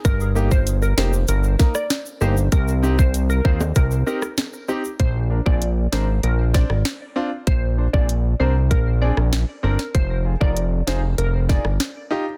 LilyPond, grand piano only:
\new Staff \with { instrumentName = "Grand piano" } { \time 4/4 \key bes \mixolydian \tempo 4 = 97 r8 <bes ees' g'>16 r8. <bes ees' g'>16 r8. <bes ees' bes'>16 r8. <bes ees' g'>16 r16 | r8 <c' ees' g'>16 r8. <c' ees' f'>16 r8. <c' ees' g'>16 r8. <c' ees' g'>16 r16 | r8 <d' bes'>16 <c' d' aes'>16 r8 <c' d' bes'>16 r8. <c' d' c''>16 r8. <c' d' f'>16 r16 | r8 <d' c''>16 <c' d' aes'>16 r8 <c' d' bes'>16 r8. <c' d' aes'>16 r8. <c' d' bes'>16 r16 |
r8 <f' aes'>16 <ees' f' bes'>16 r8 <ees' f' aes'>16 r8. <ees' f' aes'>16 r8. <ees' f' g'>16 r16 | }